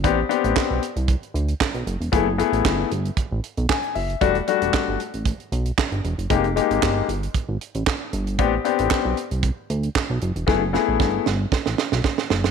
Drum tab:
HH |x-xx--xxxxxx-xxx|x-xx--xxx-xx-xox|xxxx--xxxxxx-xxx|xxxx--xxx-xx--xx|
CP |----x-------x---|----x-------x---|----x-------x---|----x-------x---|
SD |----o-------o---|----o-------o---|----o-------o---|----o-------o---|
BD |o---o---o---o---|o---o---o---o---|o---o---o---o---|o---o---o---o---|

HH |x-xx--xxx-xx--xx|----------------|
CP |----x-------x---|----------------|
SD |----o-------o---|o-o-o-o-oooooooo|
BD |o---o---o---o---|o---o---o---o---|